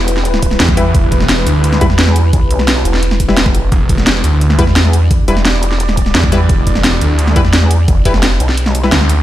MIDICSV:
0, 0, Header, 1, 6, 480
1, 0, Start_track
1, 0, Key_signature, 1, "minor"
1, 0, Tempo, 346821
1, 1308, Time_signature, 4, 2, 24, 8
1, 12772, End_track
2, 0, Start_track
2, 0, Title_t, "Ambient pad"
2, 0, Program_c, 0, 92
2, 0, Note_on_c, 0, 64, 84
2, 0, Note_on_c, 0, 67, 76
2, 0, Note_on_c, 0, 71, 92
2, 5116, Note_off_c, 0, 71, 0
2, 5145, Note_on_c, 0, 74, 90
2, 12771, Note_off_c, 0, 64, 0
2, 12772, Note_off_c, 0, 67, 0
2, 12772, Note_off_c, 0, 74, 0
2, 12772, End_track
3, 0, Start_track
3, 0, Title_t, "Synth stab"
3, 0, Program_c, 1, 62
3, 1068, Note_on_c, 1, 55, 95
3, 1068, Note_on_c, 1, 64, 90
3, 1068, Note_on_c, 1, 71, 101
3, 1174, Note_off_c, 1, 55, 0
3, 1174, Note_off_c, 1, 64, 0
3, 1174, Note_off_c, 1, 71, 0
3, 2508, Note_on_c, 1, 55, 100
3, 2508, Note_on_c, 1, 64, 92
3, 2508, Note_on_c, 1, 71, 111
3, 2574, Note_off_c, 1, 55, 0
3, 2574, Note_off_c, 1, 64, 0
3, 2574, Note_off_c, 1, 71, 0
3, 4548, Note_on_c, 1, 55, 92
3, 4548, Note_on_c, 1, 64, 83
3, 4548, Note_on_c, 1, 71, 96
3, 4654, Note_off_c, 1, 55, 0
3, 4654, Note_off_c, 1, 64, 0
3, 4654, Note_off_c, 1, 71, 0
3, 6347, Note_on_c, 1, 55, 105
3, 6347, Note_on_c, 1, 64, 90
3, 6347, Note_on_c, 1, 71, 113
3, 6414, Note_off_c, 1, 55, 0
3, 6414, Note_off_c, 1, 64, 0
3, 6414, Note_off_c, 1, 71, 0
3, 7308, Note_on_c, 1, 55, 85
3, 7308, Note_on_c, 1, 64, 77
3, 7308, Note_on_c, 1, 71, 96
3, 7414, Note_off_c, 1, 55, 0
3, 7414, Note_off_c, 1, 64, 0
3, 7414, Note_off_c, 1, 71, 0
3, 8747, Note_on_c, 1, 55, 95
3, 8747, Note_on_c, 1, 64, 87
3, 8747, Note_on_c, 1, 71, 107
3, 8853, Note_off_c, 1, 64, 0
3, 8853, Note_off_c, 1, 71, 0
3, 8854, Note_off_c, 1, 55, 0
3, 10187, Note_on_c, 1, 64, 96
3, 10187, Note_on_c, 1, 71, 115
3, 10188, Note_on_c, 1, 55, 100
3, 10254, Note_off_c, 1, 55, 0
3, 10254, Note_off_c, 1, 64, 0
3, 10254, Note_off_c, 1, 71, 0
3, 11148, Note_on_c, 1, 55, 88
3, 11148, Note_on_c, 1, 64, 79
3, 11148, Note_on_c, 1, 71, 95
3, 11254, Note_off_c, 1, 55, 0
3, 11254, Note_off_c, 1, 64, 0
3, 11254, Note_off_c, 1, 71, 0
3, 12228, Note_on_c, 1, 55, 93
3, 12228, Note_on_c, 1, 64, 83
3, 12228, Note_on_c, 1, 71, 98
3, 12334, Note_off_c, 1, 55, 0
3, 12334, Note_off_c, 1, 64, 0
3, 12334, Note_off_c, 1, 71, 0
3, 12772, End_track
4, 0, Start_track
4, 0, Title_t, "Detuned saw bass"
4, 0, Program_c, 2, 39
4, 827, Note_on_c, 2, 40, 100
4, 1288, Note_off_c, 2, 40, 0
4, 1308, Note_on_c, 2, 28, 100
4, 2009, Note_off_c, 2, 28, 0
4, 2027, Note_on_c, 2, 38, 98
4, 2488, Note_off_c, 2, 38, 0
4, 5148, Note_on_c, 2, 28, 98
4, 5849, Note_off_c, 2, 28, 0
4, 5867, Note_on_c, 2, 38, 96
4, 6328, Note_off_c, 2, 38, 0
4, 8507, Note_on_c, 2, 40, 98
4, 8968, Note_off_c, 2, 40, 0
4, 8988, Note_on_c, 2, 28, 99
4, 9689, Note_off_c, 2, 28, 0
4, 9708, Note_on_c, 2, 38, 93
4, 10169, Note_off_c, 2, 38, 0
4, 12347, Note_on_c, 2, 38, 101
4, 12772, Note_off_c, 2, 38, 0
4, 12772, End_track
5, 0, Start_track
5, 0, Title_t, "Wobble bass"
5, 0, Program_c, 3, 39
5, 0, Note_on_c, 3, 28, 99
5, 809, Note_off_c, 3, 28, 0
5, 2509, Note_on_c, 3, 40, 94
5, 3209, Note_off_c, 3, 40, 0
5, 3228, Note_on_c, 3, 35, 96
5, 3929, Note_off_c, 3, 35, 0
5, 3947, Note_on_c, 3, 28, 102
5, 5128, Note_off_c, 3, 28, 0
5, 6348, Note_on_c, 3, 40, 95
5, 7049, Note_off_c, 3, 40, 0
5, 7308, Note_on_c, 3, 28, 96
5, 8489, Note_off_c, 3, 28, 0
5, 10189, Note_on_c, 3, 40, 99
5, 10889, Note_off_c, 3, 40, 0
5, 10909, Note_on_c, 3, 29, 94
5, 11609, Note_off_c, 3, 29, 0
5, 11629, Note_on_c, 3, 35, 98
5, 12329, Note_off_c, 3, 35, 0
5, 12772, End_track
6, 0, Start_track
6, 0, Title_t, "Drums"
6, 108, Note_on_c, 9, 42, 95
6, 228, Note_on_c, 9, 38, 39
6, 246, Note_off_c, 9, 42, 0
6, 348, Note_on_c, 9, 42, 81
6, 367, Note_off_c, 9, 38, 0
6, 468, Note_on_c, 9, 40, 51
6, 487, Note_off_c, 9, 42, 0
6, 588, Note_on_c, 9, 36, 68
6, 588, Note_on_c, 9, 42, 96
6, 607, Note_off_c, 9, 40, 0
6, 708, Note_on_c, 9, 40, 37
6, 726, Note_off_c, 9, 36, 0
6, 726, Note_off_c, 9, 42, 0
6, 828, Note_on_c, 9, 38, 127
6, 828, Note_on_c, 9, 42, 83
6, 847, Note_off_c, 9, 40, 0
6, 948, Note_on_c, 9, 36, 114
6, 948, Note_on_c, 9, 40, 51
6, 967, Note_off_c, 9, 38, 0
6, 967, Note_off_c, 9, 42, 0
6, 1068, Note_on_c, 9, 42, 99
6, 1086, Note_off_c, 9, 40, 0
6, 1087, Note_off_c, 9, 36, 0
6, 1207, Note_off_c, 9, 42, 0
6, 1308, Note_on_c, 9, 36, 127
6, 1309, Note_on_c, 9, 42, 79
6, 1447, Note_off_c, 9, 36, 0
6, 1447, Note_off_c, 9, 42, 0
6, 1548, Note_on_c, 9, 36, 66
6, 1548, Note_on_c, 9, 42, 95
6, 1668, Note_on_c, 9, 40, 47
6, 1686, Note_off_c, 9, 36, 0
6, 1686, Note_off_c, 9, 42, 0
6, 1788, Note_on_c, 9, 38, 127
6, 1788, Note_on_c, 9, 42, 78
6, 1806, Note_off_c, 9, 40, 0
6, 1927, Note_off_c, 9, 38, 0
6, 1927, Note_off_c, 9, 42, 0
6, 2028, Note_on_c, 9, 42, 94
6, 2166, Note_off_c, 9, 42, 0
6, 2269, Note_on_c, 9, 42, 80
6, 2388, Note_on_c, 9, 40, 49
6, 2407, Note_off_c, 9, 42, 0
6, 2507, Note_on_c, 9, 42, 88
6, 2508, Note_on_c, 9, 36, 115
6, 2527, Note_off_c, 9, 40, 0
6, 2628, Note_on_c, 9, 40, 38
6, 2646, Note_off_c, 9, 36, 0
6, 2646, Note_off_c, 9, 42, 0
6, 2748, Note_on_c, 9, 38, 127
6, 2748, Note_on_c, 9, 42, 80
6, 2767, Note_off_c, 9, 40, 0
6, 2868, Note_on_c, 9, 40, 50
6, 2887, Note_off_c, 9, 38, 0
6, 2887, Note_off_c, 9, 42, 0
6, 2987, Note_on_c, 9, 42, 94
6, 3006, Note_off_c, 9, 40, 0
6, 3126, Note_off_c, 9, 42, 0
6, 3227, Note_on_c, 9, 42, 79
6, 3228, Note_on_c, 9, 36, 125
6, 3366, Note_off_c, 9, 36, 0
6, 3366, Note_off_c, 9, 42, 0
6, 3468, Note_on_c, 9, 42, 88
6, 3588, Note_on_c, 9, 40, 47
6, 3606, Note_off_c, 9, 42, 0
6, 3708, Note_on_c, 9, 38, 124
6, 3708, Note_on_c, 9, 42, 79
6, 3726, Note_off_c, 9, 40, 0
6, 3846, Note_off_c, 9, 38, 0
6, 3846, Note_off_c, 9, 42, 0
6, 3948, Note_on_c, 9, 42, 93
6, 4068, Note_on_c, 9, 38, 39
6, 4087, Note_off_c, 9, 42, 0
6, 4188, Note_on_c, 9, 42, 79
6, 4207, Note_off_c, 9, 38, 0
6, 4308, Note_on_c, 9, 40, 46
6, 4327, Note_off_c, 9, 42, 0
6, 4428, Note_on_c, 9, 36, 66
6, 4428, Note_on_c, 9, 42, 86
6, 4446, Note_off_c, 9, 40, 0
6, 4548, Note_on_c, 9, 40, 35
6, 4566, Note_off_c, 9, 36, 0
6, 4566, Note_off_c, 9, 42, 0
6, 4668, Note_on_c, 9, 38, 124
6, 4668, Note_on_c, 9, 42, 77
6, 4686, Note_off_c, 9, 40, 0
6, 4788, Note_on_c, 9, 36, 112
6, 4788, Note_on_c, 9, 40, 48
6, 4806, Note_off_c, 9, 38, 0
6, 4806, Note_off_c, 9, 42, 0
6, 4908, Note_on_c, 9, 42, 92
6, 4926, Note_off_c, 9, 36, 0
6, 4926, Note_off_c, 9, 40, 0
6, 5046, Note_off_c, 9, 42, 0
6, 5148, Note_on_c, 9, 36, 118
6, 5148, Note_on_c, 9, 42, 79
6, 5286, Note_off_c, 9, 36, 0
6, 5287, Note_off_c, 9, 42, 0
6, 5388, Note_on_c, 9, 36, 66
6, 5388, Note_on_c, 9, 42, 89
6, 5508, Note_on_c, 9, 40, 44
6, 5526, Note_off_c, 9, 36, 0
6, 5527, Note_off_c, 9, 42, 0
6, 5629, Note_on_c, 9, 38, 123
6, 5629, Note_on_c, 9, 42, 80
6, 5647, Note_off_c, 9, 40, 0
6, 5767, Note_off_c, 9, 38, 0
6, 5767, Note_off_c, 9, 42, 0
6, 5868, Note_on_c, 9, 42, 89
6, 6006, Note_off_c, 9, 42, 0
6, 6109, Note_on_c, 9, 42, 79
6, 6228, Note_on_c, 9, 40, 46
6, 6247, Note_off_c, 9, 42, 0
6, 6348, Note_on_c, 9, 36, 109
6, 6348, Note_on_c, 9, 42, 90
6, 6366, Note_off_c, 9, 40, 0
6, 6468, Note_on_c, 9, 40, 34
6, 6486, Note_off_c, 9, 36, 0
6, 6486, Note_off_c, 9, 42, 0
6, 6588, Note_on_c, 9, 38, 122
6, 6588, Note_on_c, 9, 42, 79
6, 6606, Note_off_c, 9, 40, 0
6, 6708, Note_on_c, 9, 40, 47
6, 6726, Note_off_c, 9, 38, 0
6, 6726, Note_off_c, 9, 42, 0
6, 6828, Note_on_c, 9, 42, 91
6, 6847, Note_off_c, 9, 40, 0
6, 6967, Note_off_c, 9, 42, 0
6, 7068, Note_on_c, 9, 36, 117
6, 7068, Note_on_c, 9, 42, 80
6, 7206, Note_off_c, 9, 36, 0
6, 7206, Note_off_c, 9, 42, 0
6, 7307, Note_on_c, 9, 42, 93
6, 7428, Note_on_c, 9, 40, 45
6, 7446, Note_off_c, 9, 42, 0
6, 7548, Note_on_c, 9, 38, 113
6, 7548, Note_on_c, 9, 42, 79
6, 7567, Note_off_c, 9, 40, 0
6, 7686, Note_off_c, 9, 38, 0
6, 7686, Note_off_c, 9, 42, 0
6, 7788, Note_on_c, 9, 42, 91
6, 7908, Note_on_c, 9, 38, 36
6, 7926, Note_off_c, 9, 42, 0
6, 8027, Note_on_c, 9, 42, 83
6, 8046, Note_off_c, 9, 38, 0
6, 8148, Note_on_c, 9, 40, 46
6, 8166, Note_off_c, 9, 42, 0
6, 8268, Note_on_c, 9, 36, 62
6, 8268, Note_on_c, 9, 42, 95
6, 8286, Note_off_c, 9, 40, 0
6, 8388, Note_on_c, 9, 40, 33
6, 8406, Note_off_c, 9, 36, 0
6, 8406, Note_off_c, 9, 42, 0
6, 8508, Note_on_c, 9, 38, 117
6, 8508, Note_on_c, 9, 42, 81
6, 8527, Note_off_c, 9, 40, 0
6, 8628, Note_on_c, 9, 36, 107
6, 8628, Note_on_c, 9, 40, 46
6, 8646, Note_off_c, 9, 38, 0
6, 8646, Note_off_c, 9, 42, 0
6, 8749, Note_on_c, 9, 42, 98
6, 8766, Note_off_c, 9, 36, 0
6, 8767, Note_off_c, 9, 40, 0
6, 8887, Note_off_c, 9, 42, 0
6, 8988, Note_on_c, 9, 36, 114
6, 8988, Note_on_c, 9, 42, 83
6, 9126, Note_off_c, 9, 42, 0
6, 9127, Note_off_c, 9, 36, 0
6, 9227, Note_on_c, 9, 42, 97
6, 9228, Note_on_c, 9, 36, 62
6, 9348, Note_on_c, 9, 40, 46
6, 9366, Note_off_c, 9, 42, 0
6, 9367, Note_off_c, 9, 36, 0
6, 9468, Note_on_c, 9, 38, 118
6, 9468, Note_on_c, 9, 42, 80
6, 9486, Note_off_c, 9, 40, 0
6, 9607, Note_off_c, 9, 38, 0
6, 9607, Note_off_c, 9, 42, 0
6, 9708, Note_on_c, 9, 42, 97
6, 9846, Note_off_c, 9, 42, 0
6, 9947, Note_on_c, 9, 42, 84
6, 10067, Note_on_c, 9, 40, 46
6, 10086, Note_off_c, 9, 42, 0
6, 10186, Note_on_c, 9, 42, 98
6, 10188, Note_on_c, 9, 36, 108
6, 10206, Note_off_c, 9, 40, 0
6, 10306, Note_on_c, 9, 40, 35
6, 10325, Note_off_c, 9, 42, 0
6, 10327, Note_off_c, 9, 36, 0
6, 10426, Note_on_c, 9, 38, 115
6, 10426, Note_on_c, 9, 42, 83
6, 10444, Note_off_c, 9, 40, 0
6, 10547, Note_on_c, 9, 40, 46
6, 10565, Note_off_c, 9, 38, 0
6, 10565, Note_off_c, 9, 42, 0
6, 10666, Note_on_c, 9, 42, 99
6, 10685, Note_off_c, 9, 40, 0
6, 10805, Note_off_c, 9, 42, 0
6, 10907, Note_on_c, 9, 42, 86
6, 10908, Note_on_c, 9, 36, 118
6, 11045, Note_off_c, 9, 42, 0
6, 11046, Note_off_c, 9, 36, 0
6, 11146, Note_on_c, 9, 42, 100
6, 11148, Note_on_c, 9, 36, 63
6, 11267, Note_on_c, 9, 40, 47
6, 11285, Note_off_c, 9, 42, 0
6, 11286, Note_off_c, 9, 36, 0
6, 11386, Note_on_c, 9, 38, 117
6, 11386, Note_on_c, 9, 42, 82
6, 11406, Note_off_c, 9, 40, 0
6, 11525, Note_off_c, 9, 38, 0
6, 11525, Note_off_c, 9, 42, 0
6, 11627, Note_on_c, 9, 42, 96
6, 11748, Note_on_c, 9, 38, 36
6, 11766, Note_off_c, 9, 42, 0
6, 11867, Note_on_c, 9, 42, 89
6, 11886, Note_off_c, 9, 38, 0
6, 11988, Note_on_c, 9, 40, 47
6, 12006, Note_off_c, 9, 42, 0
6, 12107, Note_on_c, 9, 42, 97
6, 12126, Note_off_c, 9, 40, 0
6, 12227, Note_on_c, 9, 40, 36
6, 12245, Note_off_c, 9, 42, 0
6, 12346, Note_on_c, 9, 38, 118
6, 12346, Note_on_c, 9, 42, 85
6, 12366, Note_off_c, 9, 40, 0
6, 12467, Note_on_c, 9, 40, 49
6, 12485, Note_off_c, 9, 38, 0
6, 12485, Note_off_c, 9, 42, 0
6, 12587, Note_on_c, 9, 42, 99
6, 12605, Note_off_c, 9, 40, 0
6, 12725, Note_off_c, 9, 42, 0
6, 12772, End_track
0, 0, End_of_file